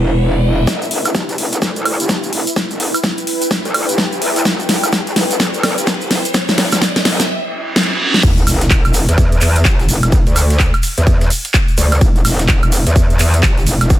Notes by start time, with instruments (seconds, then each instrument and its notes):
Already playing: wobble bass E1, ambient pad E4 B4 F#5, riser
0.67 wobble bass E1, ambient pad E4, kick, snare, riser, shaker
0.82 closed hi-hat, shaker
0.91 wobble bass E1, open hi-hat
1.05 closed hi-hat, high woodblock, shaker
1.15 wobble bass G1, kick, snare, shaker
1.29 closed hi-hat, shaker
1.38 wobble bass E1, open hi-hat
1.52 closed hi-hat, shaker
1.62 wobble bass D2, kick, snare, shaker
1.68 ambient pad B4
1.76 wobble bass D2, closed hi-hat, shaker
1.85 open hi-hat, high woodblock
2.00 wobble bass G1, closed hi-hat, shaker
2.09 kick, snare, shaker
2.23 closed hi-hat, shaker
2.33 wobble bass E1, ambient pad G5, open hi-hat
2.47 closed hi-hat, shaker
2.56 kick, snare, shaker
2.71 wobble bass E1, closed hi-hat, shaker
2.80 open hi-hat
2.94 closed hi-hat, high woodblock, shaker
3.03 kick, snare, shaker
3.18 closed hi-hat, shaker
3.27 open hi-hat
3.42 closed hi-hat, shaker
3.51 kick, snare, shaker
3.65 wobble bass D2, closed hi-hat, shaker
3.74 open hi-hat, high woodblock
3.89 wobble bass G1, closed hi-hat, shaker
3.98 kick, snare, shaker
4.12 closed hi-hat, shaker
4.22 wobble bass E2, open hi-hat
4.36 closed hi-hat, shaker
4.45 wobble bass E1, kick, snare, shaker
4.60 closed hi-hat, shaker
4.69 wobble bass E1, snare, open hi-hat
4.83 closed hi-hat, high woodblock, shaker
4.92 wobble bass G1, kick, snare, shaker
5.07 closed hi-hat, shaker
5.16 wobble bass E1, snare, open hi-hat
5.31 closed hi-hat, shaker
5.40 wobble bass D2, kick, snare, shaker
5.54 wobble bass D2, closed hi-hat, shaker
5.63 snare, open hi-hat, high woodblock
5.78 wobble bass G1, closed hi-hat, shaker
5.87 kick, snare, shaker
6.01 closed hi-hat, shaker
6.11 wobble bass E1, snare, open hi-hat
6.25 closed hi-hat, shaker
6.34 kick, snare, shaker
6.48 wobble bass E1, snare, closed hi-hat, shaker
6.58 snare, open hi-hat
6.72 wobble bass F#1, snare, closed hi-hat, high woodblock, shaker
6.82 kick, snare, shaker
6.96 snare, closed hi-hat, shaker
7.05 wobble bass E1, snare, open hi-hat
7.20 snare, closed hi-hat, shaker
7.29 reverse cymbal
7.76 snare
8.14 snare
8.23 wobble bass E1, kick, crash, ride, sub drop, shaker
8.38 closed hi-hat, shaker
8.47 wobble bass E1, open hi-hat, high woodblock, shaker
8.61 snare, closed hi-hat, shaker
8.70 kick, snare, clap, ride, shaker
8.85 wobble bass E1, closed hi-hat, high woodblock, shaker
8.94 open hi-hat, ride, shaker
9.08 wobble bass E2, closed hi-hat, ride, shaker
9.18 kick, ride, shaker
9.32 closed hi-hat, shaker
9.41 wobble bass E2, snare, clap, open hi-hat, ride, shaker
9.56 closed hi-hat, shaker
9.65 wobble bass G1, kick, snare, clap, ride, shaker
9.79 snare, closed hi-hat, shaker
9.89 wobble bass E1, open hi-hat, ride, shaker
10.03 wobble bass E1, snare, closed hi-hat, high woodblock, shaker
10.12 kick, ride, shaker
10.27 wobble bass D2, closed hi-hat, ride, shaker
10.36 open hi-hat, ride, high woodblock, shaker
10.50 snare, closed hi-hat, shaker
10.60 kick, snare, clap, ride, shaker
10.74 closed hi-hat, high woodblock, shaker
10.83 open hi-hat, ride, shaker
10.98 wobble bass E2, closed hi-hat, shaker
11.07 kick, ride, shaker
11.21 snare, closed hi-hat, shaker
11.30 open hi-hat, ride, shaker
11.45 closed hi-hat, ride, shaker
11.54 kick, snare, clap, ride, shaker
11.68 closed hi-hat, shaker
11.78 wobble bass D2, open hi-hat, ride, shaker
11.92 snare, closed hi-hat, high woodblock, shaker
12.01 wobble bass E1, kick, ride, shaker
12.16 closed hi-hat, shaker
12.25 wobble bass E1, open hi-hat, high woodblock, shaker
12.39 snare, closed hi-hat, shaker
12.48 kick, snare, clap, ride, shaker
12.63 wobble bass E1, closed hi-hat, high woodblock, shaker
12.72 open hi-hat, ride, shaker
12.87 wobble bass E2, closed hi-hat, ride, shaker
12.96 kick, ride, shaker
13.10 closed hi-hat, shaker
13.19 wobble bass E2, snare, clap, open hi-hat, ride, shaker
13.34 closed hi-hat, shaker
13.43 wobble bass G1, kick, snare, clap, ride, shaker
13.57 snare, closed hi-hat, shaker
13.67 wobble bass E1, open hi-hat, ride, shaker
13.81 wobble bass E1, snare, closed hi-hat, high woodblock, shaker
13.90 kick, ride, shaker